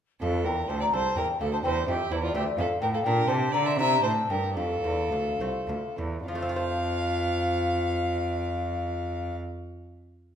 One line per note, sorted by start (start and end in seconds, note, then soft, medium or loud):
0.21 0.46 F2 medium
0.21 0.43 F2 medium
0.21 0.47 A4 medium
0.21 0.43 F5 medium
0.44 0.68 E2 medium
0.44 0.67 E2 soft
0.44 0.70 A#4 medium
0.44 0.70 G5 medium
0.68 0.91 D2 medium
0.68 0.91 D2 soft
0.68 0.80 C5 medium
0.68 0.81 A5 medium
0.81 0.85 D5 medium
0.81 0.94 A#5 medium
0.92 1.00 C2 medium
0.92 1.14 C4 soft
0.92 1.60 A4 soft
0.92 1.16 C5 medium
0.92 1.17 A5 medium
1.16 1.24 E2 medium
1.16 1.38 E2 medium
1.16 1.25 A#4 medium
1.16 1.39 G5 medium
1.40 1.63 D2 medium
1.40 1.62 D2 medium
1.40 1.52 A4 medium
1.40 1.45 F5 medium
1.52 1.57 C5 medium
1.52 1.58 A5 medium
1.63 1.87 E2 medium
1.63 1.85 E2 medium
1.63 2.31 C4 soft
1.63 2.31 G4 soft
1.63 1.87 C5 medium
1.63 1.69 G5 loud
1.86 1.96 F2 medium
1.86 2.09 F2 medium
1.86 2.13 G4 medium
1.86 2.10 E5 medium
2.11 2.34 E2 medium
2.11 2.32 E2 medium
2.11 2.23 E4 medium
2.11 2.16 C5 medium
2.22 2.35 F4 medium
2.22 2.34 D5 medium
2.33 2.43 D2 medium
2.33 2.55 D2 medium
2.33 3.01 A3 soft
2.33 3.01 D4 medium
2.33 2.43 G4 medium
2.33 2.58 E5 loud
2.57 2.65 F2 medium
2.57 2.79 F2 medium
2.57 2.68 A4 medium
2.57 2.80 F5 loud
2.81 3.04 A2 medium
2.81 3.03 A2 medium
2.81 2.87 A#4 medium
2.81 2.92 G5 loud
2.93 2.98 A4 medium
2.93 3.05 F5 medium
3.03 3.27 A#2 medium
3.03 3.75 D4 soft
3.03 3.30 A#4 medium
3.03 3.29 G5 loud
3.28 3.52 C3 medium
3.28 3.51 C3 medium
3.28 3.53 C5 medium
3.28 3.52 A5 loud
3.52 3.78 D3 medium
3.52 3.76 D3 medium
3.52 3.68 D5 medium
3.52 3.65 A#5 loud
3.66 3.77 E5 medium
3.66 3.77 C6 medium
3.77 4.02 C3 medium
3.77 4.01 C3 medium
3.77 4.53 C4 soft
3.77 4.53 E4 soft
3.77 4.02 E5 medium
3.77 4.04 A#5 loud
4.02 4.29 A2 medium
4.02 4.27 A2 medium
4.02 4.11 C5 medium
4.02 4.31 A5 medium
4.29 4.57 G2 medium
4.29 4.54 G2 medium
4.29 4.55 A#4 medium
4.29 4.55 G5 medium
4.55 4.82 F2 medium
4.55 4.81 F2 soft
4.55 5.95 A4 medium
4.55 5.95 F5 medium
4.83 5.12 E2 medium
4.83 5.09 E2 soft
5.11 5.39 D2 medium
5.11 5.37 D2 soft
5.39 5.47 C2 medium
5.39 5.66 A3 soft
5.39 5.66 C4 soft
5.39 6.25 F4 soft
5.68 5.76 D2 medium
5.68 5.95 D2 soft
5.97 6.27 E2 medium
5.97 6.25 E2 soft
6.27 9.35 F2 medium
6.27 9.36 F3 medium
6.27 9.35 F5 medium
6.35 9.43 A3 medium
6.42 9.50 C4 medium
6.49 9.57 F4 medium
6.56 9.64 C5 medium